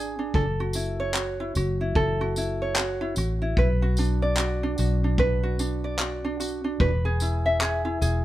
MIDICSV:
0, 0, Header, 1, 4, 480
1, 0, Start_track
1, 0, Key_signature, 3, "minor"
1, 0, Tempo, 806994
1, 205, Time_signature, 4, 2, 24, 8
1, 4906, End_track
2, 0, Start_track
2, 0, Title_t, "Ukulele"
2, 0, Program_c, 0, 24
2, 0, Note_on_c, 0, 62, 56
2, 0, Note_on_c, 0, 68, 56
2, 0, Note_on_c, 0, 71, 80
2, 0, Note_on_c, 0, 74, 57
2, 104, Note_off_c, 0, 62, 0
2, 111, Note_on_c, 0, 62, 53
2, 202, Note_off_c, 0, 71, 0
2, 206, Note_on_c, 0, 69, 69
2, 258, Note_off_c, 0, 74, 0
2, 264, Note_off_c, 0, 62, 0
2, 264, Note_off_c, 0, 68, 0
2, 357, Note_on_c, 0, 66, 56
2, 447, Note_on_c, 0, 64, 52
2, 593, Note_on_c, 0, 73, 66
2, 685, Note_off_c, 0, 64, 0
2, 688, Note_off_c, 0, 66, 0
2, 688, Note_on_c, 0, 66, 58
2, 833, Note_on_c, 0, 64, 64
2, 928, Note_off_c, 0, 64, 0
2, 931, Note_off_c, 0, 66, 0
2, 931, Note_on_c, 0, 66, 56
2, 1075, Note_on_c, 0, 64, 51
2, 1159, Note_off_c, 0, 69, 0
2, 1166, Note_on_c, 0, 69, 77
2, 1312, Note_off_c, 0, 66, 0
2, 1314, Note_on_c, 0, 66, 60
2, 1404, Note_off_c, 0, 64, 0
2, 1411, Note_on_c, 0, 64, 51
2, 1550, Note_off_c, 0, 73, 0
2, 1557, Note_on_c, 0, 73, 58
2, 1654, Note_off_c, 0, 64, 0
2, 1656, Note_off_c, 0, 66, 0
2, 1656, Note_on_c, 0, 66, 58
2, 1790, Note_on_c, 0, 64, 59
2, 1887, Note_off_c, 0, 64, 0
2, 1890, Note_off_c, 0, 66, 0
2, 1890, Note_on_c, 0, 66, 57
2, 2032, Note_on_c, 0, 64, 55
2, 2126, Note_off_c, 0, 69, 0
2, 2132, Note_on_c, 0, 71, 74
2, 2185, Note_off_c, 0, 64, 0
2, 2187, Note_off_c, 0, 73, 0
2, 2274, Note_off_c, 0, 66, 0
2, 2274, Note_on_c, 0, 66, 62
2, 2371, Note_on_c, 0, 62, 62
2, 2512, Note_on_c, 0, 74, 64
2, 2602, Note_off_c, 0, 66, 0
2, 2609, Note_on_c, 0, 66, 70
2, 2748, Note_off_c, 0, 62, 0
2, 2755, Note_on_c, 0, 62, 64
2, 2842, Note_off_c, 0, 66, 0
2, 2849, Note_on_c, 0, 66, 58
2, 2991, Note_off_c, 0, 62, 0
2, 2998, Note_on_c, 0, 62, 52
2, 3087, Note_off_c, 0, 71, 0
2, 3089, Note_on_c, 0, 71, 82
2, 3225, Note_off_c, 0, 66, 0
2, 3232, Note_on_c, 0, 66, 55
2, 3321, Note_off_c, 0, 62, 0
2, 3328, Note_on_c, 0, 62, 56
2, 3467, Note_off_c, 0, 74, 0
2, 3474, Note_on_c, 0, 74, 60
2, 3561, Note_off_c, 0, 66, 0
2, 3568, Note_on_c, 0, 66, 56
2, 3707, Note_off_c, 0, 62, 0
2, 3714, Note_on_c, 0, 62, 61
2, 3798, Note_off_c, 0, 66, 0
2, 3806, Note_on_c, 0, 66, 60
2, 3944, Note_off_c, 0, 62, 0
2, 3951, Note_on_c, 0, 62, 59
2, 4046, Note_off_c, 0, 71, 0
2, 4049, Note_on_c, 0, 71, 79
2, 4103, Note_off_c, 0, 66, 0
2, 4104, Note_off_c, 0, 62, 0
2, 4106, Note_off_c, 0, 74, 0
2, 4193, Note_on_c, 0, 68, 66
2, 4292, Note_on_c, 0, 64, 57
2, 4435, Note_on_c, 0, 76, 71
2, 4527, Note_off_c, 0, 68, 0
2, 4530, Note_on_c, 0, 68, 65
2, 4661, Note_off_c, 0, 64, 0
2, 4668, Note_on_c, 0, 64, 62
2, 4765, Note_off_c, 0, 68, 0
2, 4767, Note_on_c, 0, 68, 56
2, 4905, Note_off_c, 0, 64, 0
2, 4906, Note_off_c, 0, 68, 0
2, 4906, Note_off_c, 0, 71, 0
2, 4906, Note_off_c, 0, 76, 0
2, 4906, End_track
3, 0, Start_track
3, 0, Title_t, "Fingered electric bass"
3, 0, Program_c, 1, 33
3, 0, Note_on_c, 1, 32, 88
3, 180, Note_off_c, 1, 32, 0
3, 205, Note_on_c, 1, 30, 100
3, 901, Note_off_c, 1, 30, 0
3, 928, Note_on_c, 1, 30, 97
3, 1148, Note_off_c, 1, 30, 0
3, 1164, Note_on_c, 1, 30, 89
3, 1861, Note_off_c, 1, 30, 0
3, 1886, Note_on_c, 1, 33, 85
3, 2106, Note_off_c, 1, 33, 0
3, 2123, Note_on_c, 1, 35, 97
3, 2821, Note_off_c, 1, 35, 0
3, 2848, Note_on_c, 1, 35, 85
3, 4023, Note_off_c, 1, 35, 0
3, 4044, Note_on_c, 1, 28, 103
3, 4742, Note_off_c, 1, 28, 0
3, 4769, Note_on_c, 1, 28, 104
3, 4906, Note_off_c, 1, 28, 0
3, 4906, End_track
4, 0, Start_track
4, 0, Title_t, "Drums"
4, 203, Note_on_c, 9, 36, 97
4, 263, Note_off_c, 9, 36, 0
4, 436, Note_on_c, 9, 54, 71
4, 496, Note_off_c, 9, 54, 0
4, 679, Note_on_c, 9, 39, 107
4, 739, Note_off_c, 9, 39, 0
4, 923, Note_on_c, 9, 54, 60
4, 983, Note_off_c, 9, 54, 0
4, 1162, Note_on_c, 9, 36, 110
4, 1222, Note_off_c, 9, 36, 0
4, 1405, Note_on_c, 9, 54, 71
4, 1464, Note_off_c, 9, 54, 0
4, 1641, Note_on_c, 9, 39, 114
4, 1700, Note_off_c, 9, 39, 0
4, 1879, Note_on_c, 9, 54, 60
4, 1939, Note_off_c, 9, 54, 0
4, 2123, Note_on_c, 9, 36, 107
4, 2183, Note_off_c, 9, 36, 0
4, 2360, Note_on_c, 9, 54, 64
4, 2420, Note_off_c, 9, 54, 0
4, 2598, Note_on_c, 9, 39, 111
4, 2658, Note_off_c, 9, 39, 0
4, 2842, Note_on_c, 9, 54, 59
4, 2901, Note_off_c, 9, 54, 0
4, 3083, Note_on_c, 9, 36, 113
4, 3142, Note_off_c, 9, 36, 0
4, 3326, Note_on_c, 9, 54, 69
4, 3386, Note_off_c, 9, 54, 0
4, 3562, Note_on_c, 9, 39, 122
4, 3621, Note_off_c, 9, 39, 0
4, 3810, Note_on_c, 9, 54, 68
4, 3869, Note_off_c, 9, 54, 0
4, 4045, Note_on_c, 9, 36, 108
4, 4104, Note_off_c, 9, 36, 0
4, 4283, Note_on_c, 9, 54, 71
4, 4342, Note_off_c, 9, 54, 0
4, 4526, Note_on_c, 9, 39, 101
4, 4586, Note_off_c, 9, 39, 0
4, 4771, Note_on_c, 9, 54, 64
4, 4830, Note_off_c, 9, 54, 0
4, 4906, End_track
0, 0, End_of_file